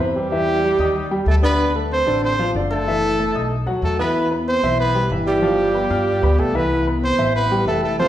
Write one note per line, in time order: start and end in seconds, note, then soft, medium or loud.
0.00 0.73 E2 medium
0.00 0.26 C3 medium
0.00 0.26 C4 medium
0.00 0.26 C5 medium
0.15 1.23 G3 medium
0.15 1.23 G4 loud
0.32 0.58 E3 medium
0.32 0.58 E4 medium
0.32 0.58 E5 medium
0.64 0.77 G3 medium
0.64 0.77 G4 medium
0.64 0.77 G5 medium
0.78 1.23 D#2 medium
0.78 1.05 D#4 medium
0.78 1.06 D#5 medium
0.78 1.06 D#6 medium
1.11 1.37 G3 medium
1.11 1.37 G4 medium
1.11 1.37 G5 medium
1.26 2.01 D2 medium
1.26 1.34 A3 medium
1.26 1.36 A4 medium
1.43 1.69 D3 medium
1.43 1.73 B3 medium
1.43 1.69 D4 medium
1.43 1.73 B4 medium
1.43 1.69 D5 medium
1.75 2.01 A3 medium
1.75 2.01 A4 medium
1.75 2.02 A5 medium
1.92 2.21 C4 medium
1.92 2.22 C5 loud
2.06 2.51 A1 medium
2.06 2.33 D3 medium
2.06 2.33 D4 medium
2.06 2.33 D5 medium
2.23 2.53 C4 medium
2.23 2.53 C5 loud
2.39 2.52 F3 medium
2.39 2.52 F4 medium
2.39 2.52 F5 medium
2.55 3.29 F#1 medium
2.55 2.81 D3 medium
2.55 2.81 D4 medium
2.55 2.81 D5 medium
2.71 3.52 A3 medium
2.71 3.52 A4 loud
2.87 3.13 E3 medium
2.87 3.14 E4 medium
2.87 3.14 E5 medium
3.19 3.32 A3 medium
3.19 3.32 A4 medium
3.19 3.32 A5 medium
3.34 3.64 B1 medium
3.34 3.61 D#4 medium
3.34 3.61 D#5 medium
3.34 3.61 D#6 medium
3.66 3.81 D#2 medium
3.66 3.93 F#3 medium
3.66 3.93 F#4 medium
3.66 3.93 F#5 medium
3.82 4.57 E2 medium
3.82 3.98 A3 medium
3.82 3.98 A4 medium
3.99 4.25 E3 medium
3.99 4.28 B3 medium
3.99 4.25 E4 medium
3.99 4.29 B4 medium
3.99 4.25 E5 medium
4.31 4.57 B3 medium
4.31 4.57 B4 medium
4.31 4.57 B5 medium
4.48 4.77 C4 medium
4.48 4.77 C5 medium
4.62 5.07 B1 medium
4.62 4.89 E3 medium
4.62 4.89 E4 medium
4.62 4.89 E5 medium
4.79 5.09 B3 medium
4.79 5.09 B4 loud
4.95 5.08 G3 medium
4.95 5.08 G4 medium
4.95 5.08 G5 medium
5.10 5.84 G1 medium
5.10 5.37 E3 medium
5.10 5.37 E4 medium
5.10 5.37 E5 medium
5.27 6.40 G3 medium
5.27 6.41 G4 medium
5.42 5.68 F3 medium
5.42 5.69 F4 medium
5.42 5.69 F5 medium
5.74 5.87 B3 medium
5.74 5.88 B4 medium
5.74 5.88 B5 medium
5.90 6.20 G2 medium
5.90 6.17 F4 medium
5.90 6.17 F5 medium
5.90 6.17 F6 medium
6.22 6.37 D2 medium
6.22 6.49 B3 medium
6.22 6.49 B4 medium
6.22 6.49 B5 medium
6.38 7.13 C2 medium
6.38 6.57 A3 medium
6.38 6.58 A4 medium
6.54 6.81 E3 medium
6.54 6.87 B3 medium
6.54 6.81 E4 medium
6.54 6.87 B4 medium
6.54 6.81 E5 medium
6.86 7.13 B3 medium
6.86 7.13 B4 medium
6.86 7.13 B5 medium
7.03 7.33 C4 medium
7.03 7.33 C5 loud
7.18 7.63 A1 medium
7.18 7.45 E3 medium
7.18 7.45 E4 medium
7.18 7.45 E5 medium
7.36 7.65 B3 medium
7.36 7.65 B4 medium
7.51 7.64 G3 medium
7.51 7.64 G4 medium
7.51 7.64 G5 medium
7.66 8.08 F1 medium
7.66 7.93 E3 medium
7.66 7.82 A3 medium
7.66 7.93 E4 medium
7.66 7.82 A4 medium
7.66 7.94 E5 medium
7.83 7.98 A3 medium
7.83 7.98 A4 medium
7.99 8.08 F3 medium
7.99 8.08 C4 medium
7.99 8.08 F4 medium
7.99 8.08 C5 loud
7.99 8.08 F5 medium